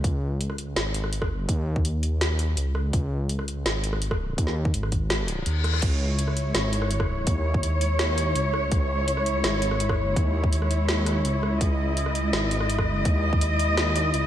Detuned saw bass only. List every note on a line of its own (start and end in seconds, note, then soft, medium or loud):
0.04 0.75 C#2 medium
0.77 1.27 G#1 medium
1.27 1.48 G1 medium
1.49 1.84 D#2 medium
1.85 2.56 D#2 medium
2.57 2.92 C#2 medium
2.94 3.64 C#2 medium
3.66 4.37 G#1 medium
4.38 4.73 D#2 medium
4.74 5.45 G#1 medium
5.47 5.81 D#2 medium
5.83 6.54 C#2 medium
6.55 7.26 G#1 medium
7.27 7.62 D#2 medium
7.64 8.34 D#2 loud
8.36 8.71 C#2 medium
8.72 9.43 C#2 medium
9.44 9.94 G#1 loud
9.94 10.15 G1 loud
10.17 10.51 D#2 loud
10.53 11.24 D#2 medium
11.25 11.60 C#2 medium
11.61 12.32 C#2 medium
12.33 12.83 G#1 loud
12.83 13.04 G1 loud
13.06 13.40 D#2 medium
13.42 14.13 D#2 medium
14.14 14.27 C#2 medium